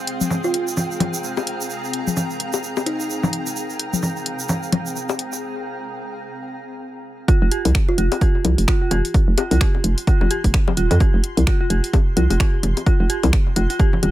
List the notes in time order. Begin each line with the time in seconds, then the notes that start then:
Already playing: C4 G#4 F5 G5 A#5
0.07 closed hi-hat
0.21 high tom, shaker
0.31 low conga, shaker
0.44 F4, shaker
0.54 closed hi-hat
0.68 shaker
0.77 low conga, shaker
0.91 shaker
1.00 closed hi-hat, high tom, low conga
1.14 shaker
1.24 shaker
1.37 high bongo, shaker
1.47 closed hi-hat
1.61 shaker
1.70 shaker
1.84 shaker
1.93 closed hi-hat
2.07 high tom, shaker
2.17 low conga, shaker
2.30 shaker
2.40 closed hi-hat
2.53 high bongo, shaker
2.63 shaker
2.77 high bongo, shaker
2.86 D#4, closed hi-hat
3.00 shaker
3.10 shaker
3.23 high tom, low conga, shaker
3.33 closed hi-hat
3.46 shaker
3.56 shaker
3.70 shaker
3.79 closed hi-hat
3.93 high tom, shaker
4.03 low conga, shaker
4.16 shaker
4.26 closed hi-hat
4.39 shaker
4.48 low conga, shaker
4.63 shaker
4.72 closed hi-hat, high tom, low conga
4.86 shaker
4.96 shaker
5.09 high bongo, shaker
5.19 closed hi-hat
5.32 shaker
7.28 F4, kick, closed hi-hat
7.42 F1 F4
7.51 G4, closed hi-hat
7.65 C2, closed hi-hat, high tom, high bongo
7.75 finger snap, kick, closed hi-hat
7.89 F4
7.98 F1 F4, closed hi-hat
8.12 F4 C6, closed hi-hat, high bongo
8.21 G4, kick, closed hi-hat
8.45 C2, closed hi-hat, high tom, high bongo
8.58 F1, closed hi-hat
8.68 F4, finger snap, kick, closed hi-hat
8.82 F4
8.91 F1 G4, closed hi-hat, high bongo, low conga
9.05 closed hi-hat
9.14 kick, closed hi-hat
9.28 F1
9.38 F4, closed hi-hat, high bongo
9.51 C2 F4, closed hi-hat, high tom
9.61 G4, finger snap, kick, closed hi-hat
9.75 high bongo
9.84 F1, closed hi-hat
9.98 closed hi-hat
10.07 F4, kick, closed hi-hat
10.21 F1 F4, high bongo, low conga
10.31 G4, closed hi-hat
10.44 F1, kick, closed hi-hat
10.54 finger snap, kick, closed hi-hat
10.68 high tom, high bongo
10.77 D#1 F4, closed hi-hat
10.91 F2 F4, closed hi-hat, low conga
11.00 G4, kick, closed hi-hat, high bongo
11.14 F1
11.24 closed hi-hat
11.37 C2, closed hi-hat, high tom
11.47 F4, finger snap, kick, closed hi-hat, high bongo
11.61 F4
11.70 F1 G4, closed hi-hat
11.84 closed hi-hat
11.93 kick, closed hi-hat, high bongo
12.17 C2 F4, closed hi-hat, high tom
12.30 F1 F4, closed hi-hat, high bongo
12.40 G4, finger snap, kick, closed hi-hat
12.63 F1, closed hi-hat, low conga
12.77 closed hi-hat, high bongo
12.86 F4, kick, closed hi-hat
13.00 F1 F4
13.10 G4, closed hi-hat
13.23 C2, closed hi-hat, high tom, high bongo
13.33 finger snap, kick, closed hi-hat
13.56 F1 F4, closed hi-hat, high bongo
13.70 F4, closed hi-hat
13.79 G4, kick, closed hi-hat
13.93 low conga
14.03 D#1 F4, closed hi-hat, high bongo